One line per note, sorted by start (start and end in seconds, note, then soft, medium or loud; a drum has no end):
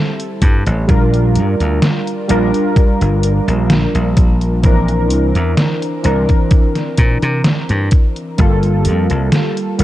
0.00 0.83 G3 medium
0.00 0.83 C4 medium
0.00 0.84 E4 medium
0.00 0.84 A4 medium
0.20 closed hi-hat soft
0.42 0.63 G2 medium
0.42 kick loud
0.42 closed hi-hat medium
0.66 0.85 A1 medium
0.66 closed hi-hat soft
0.87 1.37 A#1 medium
0.87 2.23 G3 medium
0.87 2.24 D4 medium
0.87 2.24 F4 medium
0.87 2.25 A#4 medium
0.87 kick loud
0.87 closed hi-hat medium
1.14 closed hi-hat soft
1.35 1.56 G2 loud
1.35 closed hi-hat medium
1.60 1.79 D2 medium
1.60 closed hi-hat soft
1.82 snare loud
1.82 closed hi-hat medium
2.07 closed hi-hat soft
2.28 2.50 A#1 medium
2.28 4.58 G3 medium
2.28 4.58 D4 medium
2.28 4.59 F4 medium
2.28 4.59 A#4 loud
2.28 closed hi-hat medium
2.54 closed hi-hat soft
2.76 muted slap bass stroke soft
2.76 kick loud
2.76 closed hi-hat medium
3.01 3.39 G1 medium
3.01 closed hi-hat soft
3.23 closed hi-hat medium
3.48 3.86 A#1 medium
3.48 closed hi-hat soft
3.70 snare loud
3.70 closed hi-hat medium
3.95 5.11 A#1 medium
3.95 closed hi-hat soft
4.17 kick loud
4.17 closed hi-hat medium
4.41 closed hi-hat soft
4.62 5.99 E3 medium
4.62 5.99 C4 medium
4.62 5.99 D4 medium
4.62 6.00 A#4 loud
4.62 kick loud
4.62 closed hi-hat medium
4.88 closed hi-hat soft
5.10 5.31 C2 loud
5.10 closed hi-hat medium
5.35 5.54 E2 medium
5.35 closed hi-hat soft
5.57 snare loud
5.57 closed hi-hat medium
5.82 closed hi-hat soft
6.03 6.25 C2 medium
6.03 8.33 E3 medium
6.03 8.33 C4 medium
6.03 8.34 D4 medium
6.03 8.34 A#4 medium
6.03 closed hi-hat medium
6.29 kick medium
6.29 closed hi-hat soft
6.51 kick loud
6.51 closed hi-hat medium
6.75 snare soft
6.75 closed hi-hat soft
6.98 7.19 A#2 medium
6.98 kick medium
6.98 closed hi-hat medium
7.22 7.41 C3 medium
7.22 closed hi-hat soft
7.44 snare loud
7.44 closed hi-hat medium
7.69 7.88 G2 medium
7.69 closed hi-hat soft
7.91 kick loud
7.91 closed hi-hat medium
8.16 closed hi-hat soft
8.38 8.87 G1 loud
8.38 9.74 G3 medium
8.38 9.74 A#3 medium
8.38 9.75 F4 medium
8.38 9.75 A4 medium
8.38 kick loud
8.38 closed hi-hat medium
8.63 closed hi-hat soft
8.85 9.06 F2 loud
8.85 closed hi-hat medium
9.10 9.29 C2 medium
9.10 closed hi-hat soft
9.32 snare loud
9.32 closed hi-hat medium
9.57 closed hi-hat soft
9.78 9.84 G1 medium
9.78 9.84 G3 loud
9.78 9.84 A#3 medium
9.78 9.84 F4 medium
9.78 closed hi-hat medium